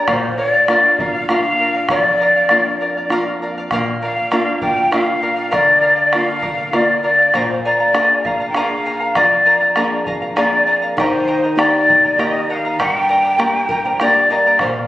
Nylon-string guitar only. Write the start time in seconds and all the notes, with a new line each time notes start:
0.07 A#2
0.68 A#3 D4 F4
1.29 A#3 D4 F4
1.90 F2
2.50 A#3 D4 F4
3.09 A#3 D4 F4
3.71 A#2
4.32 A#3 D4 F4
4.93 A#3 D4 F4
5.54 D3
6.14 A#3 D4 F4
6.73 A#3 D4 F4
7.34 A#2
7.93 A#3 D4 G#4
8.54 A#3 D4 G#4
9.17 F2
9.76 A#3 D4 G#4
10.37 A#3 D4 G#4
10.97 D#3
11.56 A#3 D#4 G4
12.18 A#3 D#4 G4
12.80 G2
13.38 A#3 D4 G4
13.69 A#4
13.85 C5
14.01 A#3 D4 G4 D5
14.14 D5
14.30 F5
14.62 A#2